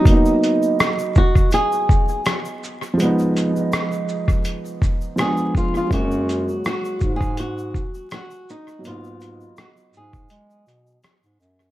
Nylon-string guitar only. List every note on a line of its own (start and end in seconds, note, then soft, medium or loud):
0.00 0.76 D#4 medium
1.18 1.53 F#4 medium
1.54 2.22 G#4 medium
5.20 5.56 G#4 loud
5.57 5.76 F4 medium
5.77 5.91 F4 medium
5.94 6.66 F#4 loud
6.67 7.16 F#4 loud
7.16 7.37 G#4 medium
7.40 8.08 F#4 medium
8.14 8.50 F#4 medium
8.50 8.86 D#4 medium
8.87 9.59 F4 loud
9.59 9.69 F#4 medium
9.97 11.01 G#4 medium